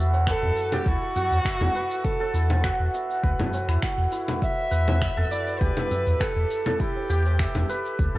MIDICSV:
0, 0, Header, 1, 6, 480
1, 0, Start_track
1, 0, Key_signature, 1, "minor"
1, 0, Tempo, 594059
1, 1656, Time_signature, 4, 2, 24, 8
1, 6613, End_track
2, 0, Start_track
2, 0, Title_t, "Kamancheh"
2, 0, Program_c, 0, 110
2, 231, Note_on_c, 0, 69, 115
2, 591, Note_on_c, 0, 67, 96
2, 603, Note_off_c, 0, 69, 0
2, 709, Note_on_c, 0, 66, 110
2, 721, Note_off_c, 0, 67, 0
2, 1653, Note_on_c, 0, 69, 96
2, 1665, Note_off_c, 0, 66, 0
2, 2134, Note_off_c, 0, 69, 0
2, 3577, Note_on_c, 0, 76, 117
2, 4292, Note_on_c, 0, 74, 96
2, 4304, Note_off_c, 0, 76, 0
2, 4527, Note_on_c, 0, 71, 99
2, 4539, Note_off_c, 0, 74, 0
2, 5011, Note_on_c, 0, 69, 96
2, 5023, Note_off_c, 0, 71, 0
2, 5492, Note_on_c, 0, 67, 85
2, 5504, Note_off_c, 0, 69, 0
2, 6454, Note_off_c, 0, 67, 0
2, 6613, End_track
3, 0, Start_track
3, 0, Title_t, "Santur"
3, 0, Program_c, 1, 15
3, 0, Note_on_c, 1, 64, 71
3, 0, Note_on_c, 1, 66, 91
3, 0, Note_on_c, 1, 69, 96
3, 0, Note_on_c, 1, 71, 90
3, 0, Note_on_c, 1, 76, 76
3, 216, Note_off_c, 1, 71, 0
3, 219, Note_on_c, 1, 71, 95
3, 584, Note_off_c, 1, 69, 0
3, 587, Note_on_c, 1, 69, 93
3, 698, Note_off_c, 1, 64, 0
3, 701, Note_on_c, 1, 64, 80
3, 935, Note_off_c, 1, 66, 0
3, 939, Note_on_c, 1, 66, 90
3, 1174, Note_off_c, 1, 76, 0
3, 1177, Note_on_c, 1, 76, 79
3, 1414, Note_off_c, 1, 71, 0
3, 1417, Note_on_c, 1, 71, 91
3, 1777, Note_off_c, 1, 69, 0
3, 1780, Note_on_c, 1, 69, 96
3, 1889, Note_off_c, 1, 64, 0
3, 1893, Note_on_c, 1, 64, 71
3, 2132, Note_off_c, 1, 66, 0
3, 2135, Note_on_c, 1, 66, 98
3, 2372, Note_off_c, 1, 76, 0
3, 2376, Note_on_c, 1, 76, 71
3, 2605, Note_off_c, 1, 71, 0
3, 2609, Note_on_c, 1, 71, 96
3, 2972, Note_off_c, 1, 64, 0
3, 2976, Note_on_c, 1, 64, 75
3, 3087, Note_off_c, 1, 66, 0
3, 3090, Note_on_c, 1, 66, 77
3, 3325, Note_off_c, 1, 64, 0
3, 3329, Note_on_c, 1, 64, 71
3, 3566, Note_off_c, 1, 76, 0
3, 3569, Note_on_c, 1, 76, 74
3, 3804, Note_off_c, 1, 71, 0
3, 3808, Note_on_c, 1, 71, 93
3, 4146, Note_off_c, 1, 69, 0
3, 4179, Note_on_c, 1, 69, 98
3, 4292, Note_off_c, 1, 64, 0
3, 4296, Note_on_c, 1, 64, 65
3, 4533, Note_on_c, 1, 67, 97
3, 4581, Note_off_c, 1, 66, 0
3, 4773, Note_off_c, 1, 76, 0
3, 4776, Note_on_c, 1, 76, 71
3, 5012, Note_off_c, 1, 71, 0
3, 5015, Note_on_c, 1, 71, 90
3, 5378, Note_off_c, 1, 69, 0
3, 5382, Note_on_c, 1, 69, 94
3, 5493, Note_off_c, 1, 64, 0
3, 5496, Note_on_c, 1, 64, 76
3, 5732, Note_off_c, 1, 67, 0
3, 5735, Note_on_c, 1, 67, 96
3, 5972, Note_off_c, 1, 76, 0
3, 5975, Note_on_c, 1, 76, 83
3, 6213, Note_off_c, 1, 71, 0
3, 6216, Note_on_c, 1, 71, 96
3, 6584, Note_off_c, 1, 69, 0
3, 6587, Note_on_c, 1, 69, 95
3, 6613, Note_off_c, 1, 64, 0
3, 6613, Note_off_c, 1, 67, 0
3, 6613, Note_off_c, 1, 69, 0
3, 6613, Note_off_c, 1, 71, 0
3, 6613, Note_off_c, 1, 76, 0
3, 6613, End_track
4, 0, Start_track
4, 0, Title_t, "Sub bass"
4, 0, Program_c, 2, 38
4, 0, Note_on_c, 2, 40, 91
4, 270, Note_off_c, 2, 40, 0
4, 341, Note_on_c, 2, 40, 78
4, 414, Note_off_c, 2, 40, 0
4, 696, Note_on_c, 2, 38, 94
4, 777, Note_off_c, 2, 38, 0
4, 1061, Note_on_c, 2, 40, 95
4, 1134, Note_off_c, 2, 40, 0
4, 1298, Note_on_c, 2, 40, 102
4, 1372, Note_off_c, 2, 40, 0
4, 1890, Note_on_c, 2, 40, 91
4, 2186, Note_off_c, 2, 40, 0
4, 2259, Note_on_c, 2, 40, 78
4, 2333, Note_off_c, 2, 40, 0
4, 2613, Note_on_c, 2, 38, 95
4, 2696, Note_off_c, 2, 38, 0
4, 2975, Note_on_c, 2, 40, 99
4, 3051, Note_off_c, 2, 40, 0
4, 3214, Note_on_c, 2, 40, 103
4, 3290, Note_off_c, 2, 40, 0
4, 3809, Note_on_c, 2, 40, 102
4, 4106, Note_off_c, 2, 40, 0
4, 4177, Note_on_c, 2, 40, 78
4, 4252, Note_off_c, 2, 40, 0
4, 4533, Note_on_c, 2, 38, 104
4, 4616, Note_off_c, 2, 38, 0
4, 4901, Note_on_c, 2, 40, 99
4, 4974, Note_off_c, 2, 40, 0
4, 5139, Note_on_c, 2, 40, 97
4, 5213, Note_off_c, 2, 40, 0
4, 5734, Note_on_c, 2, 40, 92
4, 6028, Note_off_c, 2, 40, 0
4, 6102, Note_on_c, 2, 40, 79
4, 6174, Note_off_c, 2, 40, 0
4, 6457, Note_on_c, 2, 38, 106
4, 6538, Note_off_c, 2, 38, 0
4, 6613, End_track
5, 0, Start_track
5, 0, Title_t, "Tabla"
5, 106, Note_on_c, 9, 60, 63
5, 187, Note_off_c, 9, 60, 0
5, 348, Note_on_c, 9, 64, 80
5, 429, Note_off_c, 9, 64, 0
5, 586, Note_on_c, 9, 63, 35
5, 667, Note_off_c, 9, 63, 0
5, 937, Note_on_c, 9, 64, 73
5, 1018, Note_off_c, 9, 64, 0
5, 1078, Note_on_c, 9, 63, 47
5, 1159, Note_off_c, 9, 63, 0
5, 1794, Note_on_c, 9, 63, 47
5, 1875, Note_off_c, 9, 63, 0
5, 2031, Note_on_c, 9, 60, 65
5, 2112, Note_off_c, 9, 60, 0
5, 2749, Note_on_c, 9, 64, 82
5, 2830, Note_off_c, 9, 64, 0
5, 2859, Note_on_c, 9, 60, 59
5, 2940, Note_off_c, 9, 60, 0
5, 3701, Note_on_c, 9, 63, 50
5, 3782, Note_off_c, 9, 63, 0
5, 3944, Note_on_c, 9, 60, 53
5, 4025, Note_off_c, 9, 60, 0
5, 4182, Note_on_c, 9, 64, 76
5, 4263, Note_off_c, 9, 64, 0
5, 4423, Note_on_c, 9, 63, 35
5, 4504, Note_off_c, 9, 63, 0
5, 4776, Note_on_c, 9, 64, 74
5, 4856, Note_off_c, 9, 64, 0
5, 4901, Note_on_c, 9, 63, 47
5, 4982, Note_off_c, 9, 63, 0
5, 5626, Note_on_c, 9, 63, 48
5, 5707, Note_off_c, 9, 63, 0
5, 5867, Note_on_c, 9, 60, 57
5, 5948, Note_off_c, 9, 60, 0
5, 6584, Note_on_c, 9, 64, 83
5, 6613, Note_off_c, 9, 64, 0
5, 6613, End_track
6, 0, Start_track
6, 0, Title_t, "Drums"
6, 108, Note_on_c, 9, 82, 41
6, 189, Note_off_c, 9, 82, 0
6, 214, Note_on_c, 9, 26, 103
6, 215, Note_on_c, 9, 36, 105
6, 216, Note_on_c, 9, 82, 34
6, 295, Note_off_c, 9, 26, 0
6, 296, Note_off_c, 9, 36, 0
6, 297, Note_off_c, 9, 82, 0
6, 456, Note_on_c, 9, 82, 76
6, 537, Note_off_c, 9, 82, 0
6, 582, Note_on_c, 9, 64, 69
6, 584, Note_on_c, 9, 82, 43
6, 663, Note_off_c, 9, 64, 0
6, 665, Note_off_c, 9, 82, 0
6, 694, Note_on_c, 9, 36, 104
6, 697, Note_on_c, 9, 82, 36
6, 775, Note_off_c, 9, 36, 0
6, 778, Note_off_c, 9, 82, 0
6, 935, Note_on_c, 9, 82, 85
6, 1016, Note_off_c, 9, 82, 0
6, 1067, Note_on_c, 9, 82, 48
6, 1148, Note_off_c, 9, 82, 0
6, 1174, Note_on_c, 9, 36, 106
6, 1178, Note_on_c, 9, 26, 102
6, 1180, Note_on_c, 9, 82, 34
6, 1255, Note_off_c, 9, 36, 0
6, 1259, Note_off_c, 9, 26, 0
6, 1261, Note_off_c, 9, 82, 0
6, 1301, Note_on_c, 9, 64, 76
6, 1382, Note_off_c, 9, 64, 0
6, 1413, Note_on_c, 9, 82, 74
6, 1494, Note_off_c, 9, 82, 0
6, 1542, Note_on_c, 9, 82, 43
6, 1623, Note_off_c, 9, 82, 0
6, 1653, Note_on_c, 9, 82, 36
6, 1654, Note_on_c, 9, 36, 108
6, 1734, Note_off_c, 9, 82, 0
6, 1735, Note_off_c, 9, 36, 0
6, 1894, Note_on_c, 9, 82, 77
6, 1974, Note_off_c, 9, 82, 0
6, 2021, Note_on_c, 9, 64, 67
6, 2023, Note_on_c, 9, 82, 42
6, 2102, Note_off_c, 9, 64, 0
6, 2104, Note_off_c, 9, 82, 0
6, 2133, Note_on_c, 9, 26, 93
6, 2134, Note_on_c, 9, 36, 97
6, 2135, Note_on_c, 9, 82, 34
6, 2214, Note_off_c, 9, 26, 0
6, 2215, Note_off_c, 9, 36, 0
6, 2216, Note_off_c, 9, 82, 0
6, 2378, Note_on_c, 9, 82, 82
6, 2459, Note_off_c, 9, 82, 0
6, 2506, Note_on_c, 9, 82, 42
6, 2587, Note_off_c, 9, 82, 0
6, 2613, Note_on_c, 9, 36, 107
6, 2618, Note_on_c, 9, 82, 35
6, 2693, Note_off_c, 9, 36, 0
6, 2699, Note_off_c, 9, 82, 0
6, 2742, Note_on_c, 9, 64, 80
6, 2822, Note_off_c, 9, 64, 0
6, 2854, Note_on_c, 9, 82, 79
6, 2935, Note_off_c, 9, 82, 0
6, 2979, Note_on_c, 9, 26, 29
6, 2981, Note_on_c, 9, 82, 47
6, 3060, Note_off_c, 9, 26, 0
6, 3062, Note_off_c, 9, 82, 0
6, 3090, Note_on_c, 9, 26, 98
6, 3092, Note_on_c, 9, 82, 34
6, 3093, Note_on_c, 9, 36, 105
6, 3171, Note_off_c, 9, 26, 0
6, 3173, Note_off_c, 9, 82, 0
6, 3174, Note_off_c, 9, 36, 0
6, 3331, Note_on_c, 9, 82, 76
6, 3412, Note_off_c, 9, 82, 0
6, 3461, Note_on_c, 9, 64, 73
6, 3463, Note_on_c, 9, 82, 43
6, 3542, Note_off_c, 9, 64, 0
6, 3544, Note_off_c, 9, 82, 0
6, 3573, Note_on_c, 9, 36, 103
6, 3579, Note_on_c, 9, 82, 34
6, 3654, Note_off_c, 9, 36, 0
6, 3660, Note_off_c, 9, 82, 0
6, 3814, Note_on_c, 9, 82, 73
6, 3894, Note_off_c, 9, 82, 0
6, 3943, Note_on_c, 9, 64, 75
6, 3945, Note_on_c, 9, 82, 39
6, 4023, Note_off_c, 9, 64, 0
6, 4025, Note_off_c, 9, 82, 0
6, 4053, Note_on_c, 9, 36, 100
6, 4054, Note_on_c, 9, 26, 95
6, 4056, Note_on_c, 9, 82, 31
6, 4134, Note_off_c, 9, 36, 0
6, 4135, Note_off_c, 9, 26, 0
6, 4136, Note_off_c, 9, 82, 0
6, 4295, Note_on_c, 9, 82, 74
6, 4376, Note_off_c, 9, 82, 0
6, 4422, Note_on_c, 9, 82, 42
6, 4503, Note_off_c, 9, 82, 0
6, 4533, Note_on_c, 9, 36, 106
6, 4535, Note_on_c, 9, 82, 35
6, 4614, Note_off_c, 9, 36, 0
6, 4616, Note_off_c, 9, 82, 0
6, 4661, Note_on_c, 9, 64, 75
6, 4742, Note_off_c, 9, 64, 0
6, 4774, Note_on_c, 9, 82, 77
6, 4855, Note_off_c, 9, 82, 0
6, 4903, Note_on_c, 9, 82, 46
6, 4984, Note_off_c, 9, 82, 0
6, 5014, Note_on_c, 9, 36, 107
6, 5017, Note_on_c, 9, 26, 95
6, 5019, Note_on_c, 9, 82, 34
6, 5095, Note_off_c, 9, 36, 0
6, 5098, Note_off_c, 9, 26, 0
6, 5100, Note_off_c, 9, 82, 0
6, 5257, Note_on_c, 9, 82, 77
6, 5338, Note_off_c, 9, 82, 0
6, 5382, Note_on_c, 9, 64, 75
6, 5384, Note_on_c, 9, 82, 42
6, 5463, Note_off_c, 9, 64, 0
6, 5465, Note_off_c, 9, 82, 0
6, 5495, Note_on_c, 9, 36, 101
6, 5497, Note_on_c, 9, 82, 34
6, 5575, Note_off_c, 9, 36, 0
6, 5578, Note_off_c, 9, 82, 0
6, 5736, Note_on_c, 9, 82, 70
6, 5816, Note_off_c, 9, 82, 0
6, 5863, Note_on_c, 9, 82, 42
6, 5944, Note_off_c, 9, 82, 0
6, 5974, Note_on_c, 9, 26, 90
6, 5975, Note_on_c, 9, 36, 100
6, 5975, Note_on_c, 9, 82, 31
6, 6054, Note_off_c, 9, 26, 0
6, 6056, Note_off_c, 9, 36, 0
6, 6056, Note_off_c, 9, 82, 0
6, 6099, Note_on_c, 9, 64, 78
6, 6180, Note_off_c, 9, 64, 0
6, 6215, Note_on_c, 9, 82, 72
6, 6296, Note_off_c, 9, 82, 0
6, 6346, Note_on_c, 9, 82, 39
6, 6427, Note_off_c, 9, 82, 0
6, 6456, Note_on_c, 9, 36, 104
6, 6457, Note_on_c, 9, 82, 32
6, 6537, Note_off_c, 9, 36, 0
6, 6538, Note_off_c, 9, 82, 0
6, 6613, End_track
0, 0, End_of_file